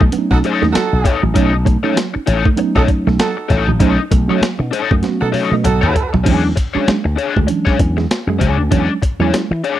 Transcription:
0.01 B1 A3, muted overdriven electric guitar stroke, kick
0.12 F#3 A3 B3 C#4 D4, closed hi-hat
0.18 D#4
0.31 B1 D#4 F#4 A4, muted overdriven electric guitar stroke, muted clean electric guitar stroke, kick, snare
0.44 D#4 A4 C#5, closed hi-hat
0.62 D#2 A3, muted overdriven electric guitar stroke, snare
0.73 F#3 D#4 F#4 A4, muted slap bass stroke, muted overdriven electric guitar stroke, snare, closed hi-hat
0.93 B1
1.04 D#4 A4 C#5, muted clean electric guitar stroke, kick, snare, closed hi-hat
1.22 A1 F#3, muted overdriven electric guitar stroke
1.34 B1 F#3 A3 C#4 D#4 A4 C#5, kick, closed hi-hat
1.53 muted overdriven electric guitar stroke, muted clean electric guitar stroke
1.64 A3 C#4 F#4, muted overdriven electric guitar stroke, kick, closed hi-hat
1.83 F#3 A3 C#4 D#4 A4 C#5
1.96 F#3, snare, closed hi-hat
2.13 C#4 D#4, muted overdriven electric guitar stroke, muted slap bass stroke
2.26 A1 D#4 A4 C#5, muted clean electric guitar stroke, closed hi-hat
2.45 A3, muted overdriven electric guitar stroke, kick
2.56 F#3 A3 B3 C#4 D#4, muted overdriven electric guitar stroke, closed hi-hat
2.76 B1 D#4 F#4 A4 C#5, kick, snare
2.88 muted overdriven electric guitar stroke, kick, closed hi-hat
3.07 B1 A3, muted overdriven electric guitar stroke, snare
3.19 F#3 D#4 F#4 A4, snare, closed hi-hat
3.37 muted overdriven electric guitar stroke
3.48 A1 D#4 A4 C#5, muted clean electric guitar stroke, kick, snare, closed hi-hat
3.67 A1 F#3, muted overdriven electric guitar stroke
3.80 B1 F#3 A3 C#4 D#4 A4 C#5, kick, closed hi-hat
3.98 muted overdriven electric guitar stroke, muted clean electric guitar stroke
4.11 B1 A3 C#4 D#4, muted overdriven electric guitar stroke, kick, closed hi-hat
4.28 F#3 A3 C#4 D#4 F#4 A4 C#5
4.41 F#3, muted slap bass stroke, snare, closed hi-hat
4.59 B2 C#4 D#4, muted overdriven electric guitar stroke
4.71 C#4 D#4 A4 C#5, muted clean electric guitar stroke, closed hi-hat
4.90 F#2 A3, muted overdriven electric guitar stroke, kick
5.02 F#3 A3 B3 C#4 F#4, snare, closed hi-hat
5.21 B2 D#4 F#4 A4, muted overdriven electric guitar stroke, muted clean electric guitar stroke
5.32 D#4 A4 C#5, open hi-hat, high tom
5.51 B2 A3, muted overdriven electric guitar stroke
5.64 B1 F#3 D#4 F#4 A4, muted overdriven electric guitar stroke, closed hi-hat, mid tom
5.81 D#2 D#4 A4 C#5, mid tom
5.95 muted overdriven electric guitar stroke, muted clean electric guitar stroke, closed hi-hat, floor tom
6.13 B1 F#3, muted overdriven electric guitar stroke, floor tom
6.24 E2 F#3 G#3 C#4 D4 G#4 C#5, kick, closed hi-hat, crash
6.28 E3
6.44 muted overdriven electric guitar stroke
6.56 muted overdriven electric guitar stroke, muted clean electric guitar stroke, kick, closed hi-hat
6.74 F#3 G#3 C#4 D4 G#4 C#5, muted slap bass stroke
6.88 G#3, muted slap bass stroke, snare, closed hi-hat
7.04 D2, muted overdriven electric guitar stroke, muted clean electric guitar stroke
7.16 C#4 D4 G#4 C#5, closed hi-hat
7.35 D2 G#3, muted overdriven electric guitar stroke, kick
7.47 E3 F#3 G#3 C#4 D4, muted overdriven electric guitar stroke, closed hi-hat
7.65 D4 G#4 C#5, kick, snare
7.78 E2, muted overdriven electric guitar stroke, muted clean electric guitar stroke, kick, closed hi-hat
7.97 G#3, muted overdriven electric guitar stroke, snare
8.11 muted clean electric guitar stroke, snare, closed hi-hat
8.27 F#2 G#3, muted overdriven electric guitar stroke
8.39 C#2 F#3 D4 G#4 C#5, kick, snare, closed hi-hat
8.58 D2 C#4 D4, muted overdriven electric guitar stroke
8.71 E2 E3 F#3 G#3 C#4 D4 G#4 C#5, kick, closed hi-hat
8.90 muted overdriven electric guitar stroke
9.02 muted overdriven electric guitar stroke, muted clean electric guitar stroke, kick, closed hi-hat
9.19 E2 F#3 G#3 C#4 D4 E4 G#4 C#5
9.33 G#3, muted slap bass stroke, snare, closed hi-hat
9.51 E3, muted overdriven electric guitar stroke, muted clean electric guitar stroke
9.63 C#4 D4 G#4 C#5, closed hi-hat

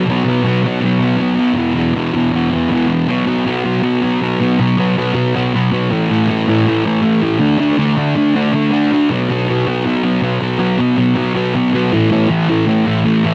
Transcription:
Already playing: B3
0.05 B2 F#3
0.11 B3
0.25 B3
0.30 F#3
0.44 B2 F#3
0.48 B3
0.63 F#3 B3
0.68 B2
0.81 B2 F#3
0.85 B3
0.99 B3
1.04 F#3
1.17 B2 F#3
1.21 B3
1.35 B3
1.39 F#3
1.53 E2 B2
1.58 E3
1.75 E3
1.79 B2
1.93 E2 B2
1.98 E3
2.12 B2 E3
2.17 E2
2.31 E2 B2
2.35 E3
2.51 E3
2.56 B2
2.68 E2 B2
2.74 E3
2.88 E3
2.94 B2
3.08 B2 F#3 B3
3.26 B2 F#3 B3
3.45 B2 F#3 B3
3.64 B2 F#3 B3
3.82 B2 F#3 B3
4.01 B2 F#3 B3
4.21 B2 F#3 B3
4.40 B2 F#3 B3
4.59 B2 F#3 B3
4.77 B2 F#3 B3
4.97 B2 F#3 B3
5.13 B2 F#3 B3
5.35 B2 F#3 B3
5.54 B2 F#3 B3
5.72 B2 F#3 B3
5.91 A2 E3 A3
6.10 A2 E3 A3
6.29 A2 E3 A3
6.47 A2 E3 A3
6.66 A2 E3 A3
6.85 A2 E3 A3
7.02 A2 E3 A3
7.21 A2 E3 A3
7.39 D3 A3 D4
7.58 D3 A3 D4
7.77 D3 A3 D4
7.96 D3 A3 D4
8.15 D3 A3 D4
8.34 D3 A3 D4
8.53 D3 A3 D4
8.71 D3 A3 D4
8.92 D3 A3 D4
9.10 B2 F#3 B3
9.30 B2 F#3 B3
9.48 B2 F#3 B3
9.66 B2 F#3 B3
9.84 B2 F#3 B3
10.03 B2 F#3 B3
10.21 B2 F#3 B3
10.41 B2 F#3 B3
10.59 B2 F#3 B3
10.79 B2 F#3 B3
10.97 B2 F#3 B3
11.15 B2 F#3 B3
11.35 B2 F#3 B3
11.54 B2 F#3 B3
11.73 B2 F#3 B3
11.92 A2 E3 A3
12.11 A2 E3 A3
12.28 A2 E3 A3
12.49 A2 E3 A3
12.66 A2 E3 A3
12.86 A2 E3 A3
13.04 A2 E3 A3
13.24 A2 E3 A3

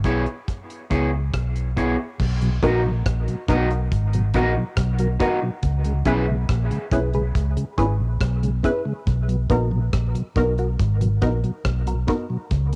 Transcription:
0.04 B1 B3 E4 G#4 C#5, kick, closed hi-hat
0.26 closed hi-hat
0.48 kick, closed hi-hat
0.70 closed hi-hat
0.90 C#2 B3 E4 G#4 C#5, kick, closed hi-hat
1.34 B1, kick, cross-stick, closed hi-hat
1.56 closed hi-hat
1.77 B3 E4 G#4 C#5, kick, closed hi-hat
2.20 B1, kick, crash
2.42 B2 F#3, closed hi-hat
2.62 A#1 A#3 B3 D#4 F#4 A#4 D#5, kick, closed hi-hat
2.85 B2 F#3
3.06 A#1, kick, cross-stick, closed hi-hat
3.28 B2 F#3, closed hi-hat
3.48 B1 A#3 B3 D#4 F#4 A#4 D#5, kick, closed hi-hat
3.70 F#4 A#4, closed hi-hat
3.92 G#1, kick, closed hi-hat
4.13 B2 F#3, closed hi-hat
4.34 A#1 A#3 B3 D#4 F#4 A#4 D#5, kick, closed hi-hat
4.56 B2 F#3
4.77 B1, kick, cross-stick, closed hi-hat
4.99 B2 F#3 F#4 A#4, closed hi-hat
5.20 A#3 B3 D#4 F#4 A#4 D#5, kick, closed hi-hat
5.42 B2 F#3, muted clean electric guitar stroke
5.63 C#2, kick, closed hi-hat
5.84 C#3 G#3, closed hi-hat
6.05 B1 B3 C#4 E4 G#4 B4 E5, kick, closed hi-hat
6.28 C#3 G#3
6.49 A#1, kick, cross-stick, closed hi-hat
6.71 C#3 G#3, closed hi-hat
6.91 B1 B3 C#4 E4 G#4 B4, kick, closed hi-hat
7.13 C#3 G#3 G#4 B4, closed hi-hat
7.35 C#2, kick, closed hi-hat
7.57 C#3 G#3, closed hi-hat
7.78 G#1 B3 C#4 E4 G#4 B4, kick, closed hi-hat
8.00 A#1
8.21 B1, kick, cross-stick, closed hi-hat
8.43 C#3 G#3, closed hi-hat
8.63 B3 C#4 E4 G#4 B4, kick, closed hi-hat
8.86 C#3 G#3
9.07 B1, kick, closed hi-hat
9.29 B2 F#3, closed hi-hat
9.50 A#1 A#3 B3 D#4 F#4 A#4, kick, closed hi-hat
9.71 B2 F#3
9.93 A#1, kick, cross-stick, closed hi-hat
10.15 B2 F#3, closed hi-hat
10.36 B1 A#3 B3 D#4 F#4 A#4, kick, closed hi-hat
10.58 F#4 A#4, closed hi-hat
10.79 G#1, kick, closed hi-hat
11.01 B2 F#3, closed hi-hat
11.21 A#1 A#3 B3 D#4 F#4 A#4, kick, closed hi-hat
11.44 B2 F#3, closed hi-hat
11.65 B1, kick, cross-stick, closed hi-hat
11.86 B2 F#3 F#4 A#4, closed hi-hat
12.07 A#3 B3 D#4 F#4 A#4, kick, closed hi-hat
12.30 B2 F#3
12.51 C#2, kick, closed hi-hat

